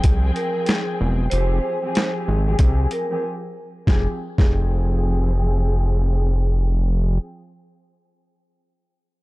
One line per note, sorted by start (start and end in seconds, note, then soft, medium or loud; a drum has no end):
0.00 1.22 F3 loud
0.00 1.23 C4 medium
0.00 1.24 G#4 loud
0.00 1.23 G5 medium
0.00 kick medium
0.00 closed hi-hat loud
0.04 0.32 C2 medium
0.36 0.65 A#4 medium
0.36 closed hi-hat medium
0.66 0.97 G#4 medium
0.66 snare loud
0.66 closed hi-hat medium
1.01 1.28 E1 loud
1.30 1.60 F1 loud
1.30 1.78 F3 loud
1.30 1.78 C4 medium
1.30 1.79 G4 medium
1.30 1.79 G#4 loud
1.30 2.10 C5 loud
1.30 closed hi-hat loud
1.82 2.40 F3 medium
1.82 2.41 C4 medium
1.82 2.41 G4 medium
1.82 2.42 G#4 loud
1.95 snare loud
1.95 closed hi-hat medium
2.28 2.56 G#1 medium
2.45 3.04 F3 medium
2.45 3.04 C4 medium
2.45 3.05 G4 medium
2.45 3.05 G#4 loud
2.59 2.87 C2 medium
2.59 kick medium
2.59 closed hi-hat loud
2.91 3.21 A#4 medium
2.91 closed hi-hat soft
3.09 3.22 F3 medium
3.09 3.23 C4 medium
3.09 3.23 G4 medium
3.09 3.24 G#4 loud
3.87 4.08 F1 loud
3.87 4.07 F3 medium
3.87 4.07 C4 medium
3.87 4.08 G4 medium
3.87 4.07 G#4 medium
3.87 4.08 G#4 medium
3.87 kick loud
3.87 snare medium
4.38 7.19 F1 loud
4.38 7.18 F3 medium
4.38 7.19 C4 medium
4.38 5.75 G#4 medium
4.38 7.19 G#4 loud
4.38 7.19 G5 medium
4.38 kick loud
4.38 snare medium